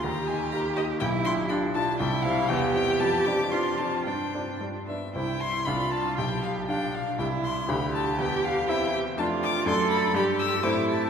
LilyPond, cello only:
\new Staff \with { instrumentName = "Cello" } { \time 2/4 \key ees \major \tempo 4 = 120 g'2 | \key c \major e'4 d'4 | e'4 g'4~ | g'4 f'4 |
d'4. r8 | e'4 f'4 | g'4 d'4 | e'4 g'4~ |
g'4 e'8 g'8 | f'4 a'4 | g'4 e'4 | }